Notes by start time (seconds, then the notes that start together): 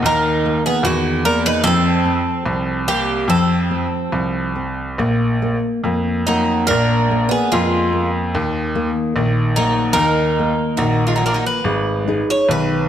0.02 D#2 D#3 D#4 A#4
0.46 A#3
0.66 B3 G#4
0.83 E2 D#3 A#3 F#4
1.25 A#3 D4 A#4
1.46 D#4 B4
1.64 F2 F3 C4 A4
2.05 C4
2.46 C2 F3
2.87 A#3 C4 G4
3.28 F2 F3 C4 A4
3.71 C4
4.12 C2 F3
4.56 C4
4.98 A#1 A#3
5.42 A#3
5.84 F2 A#3
6.27 F#3 A#3 D#4
6.67 A#1 A#3 D4 A#4
7.11 A#3
7.29 B3 G#4
7.52 F2 G#3 A#3 F4
7.93 A#3
8.35 D#2 D#3
8.75 A#3
9.16 A#1 D#3
9.56 F#3 A#3 D#4
9.93 D#2 D#4 A#4
9.99 D#3
10.39 A#3
10.77 A#1 F#3 D#4
10.81 D#3
11.07 G#3 F4
11.16 F#3 D#4
11.22 A#3
11.26 F3 D4 A#4
11.34 F#3 D#4
11.46 B4
11.64 G#1 G#3
12.08 D#4 G#4 B4
12.30 C#5
12.49 B1 D#3 B4